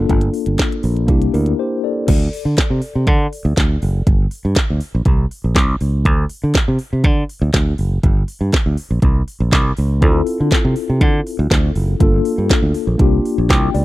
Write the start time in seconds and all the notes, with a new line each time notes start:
Already playing: A#3 D4 F4 A4
0.09 G1, kick, closed hi-hat
0.21 closed hi-hat
0.34 open hi-hat
0.46 G1, closed hi-hat
0.58 kick, snare, clap, closed hi-hat
0.72 closed hi-hat
0.83 A#1, open hi-hat
0.97 closed hi-hat
1.07 C2 A#3 D4 E4 G4, kick, closed hi-hat
1.22 closed hi-hat
1.34 D2 E4 A#4, open hi-hat
1.46 closed hi-hat
1.59 G4 C5
1.84 A4 D5
2.08 D2, kick, closed hi-hat, crash
2.33 open hi-hat
2.45 D3
2.57 kick, snare, clap, closed hi-hat
2.70 C3
2.82 open hi-hat
2.95 C3
3.07 D3, kick, closed hi-hat
3.33 open hi-hat
3.45 D2
3.57 D2, kick, snare, clap, closed hi-hat
3.82 F#1, open hi-hat
4.07 G1, kick, closed hi-hat
4.31 open hi-hat
4.45 G2
4.55 kick, snare, clap, closed hi-hat
4.70 D2
4.80 open hi-hat
4.95 A#1
5.05 C2, kick, closed hi-hat
5.31 open hi-hat
5.44 A#1
5.56 C2, kick, snare, clap, closed hi-hat
5.81 C#2, open hi-hat
6.05 D2, kick, closed hi-hat
6.29 open hi-hat
6.44 D3
6.54 kick, snare, clap, closed hi-hat
6.68 C3
6.79 open hi-hat
6.93 C3
7.04 D3, kick, closed hi-hat
7.29 open hi-hat
7.42 D2
7.54 D2, kick, snare, clap, closed hi-hat
7.78 F#1, open hi-hat
8.03 G1, kick, closed hi-hat
8.28 open hi-hat
8.41 G2
8.53 kick, snare, clap, closed hi-hat
8.66 D2
8.77 open hi-hat
8.91 A#1
9.02 C2, kick, closed hi-hat
9.28 open hi-hat
9.40 A#1
9.52 C2, kick, snare, clap, closed hi-hat
9.77 C#2, open hi-hat
10.01 D2 C4 E4 F4 A4, kick, closed hi-hat
10.27 open hi-hat
10.40 D3
10.51 kick, snare, clap, closed hi-hat
10.65 C3
10.76 open hi-hat
10.90 C3
11.01 D3, kick, closed hi-hat
11.27 open hi-hat
11.39 D2
11.51 D2, kick, snare, clap, closed hi-hat
11.75 F#1, open hi-hat
12.00 G1 A#3 D4 F4 A4, kick, closed hi-hat
12.25 open hi-hat
12.38 G2
12.50 kick, snare, clap, closed hi-hat
12.62 D2
12.74 open hi-hat
12.87 A#1
12.98 C2 A#3 D4 F4 G4, kick, closed hi-hat
13.25 open hi-hat
13.38 A#1
13.50 C2 G5, kick, snare, clap, closed hi-hat
13.74 C#2 D5, open hi-hat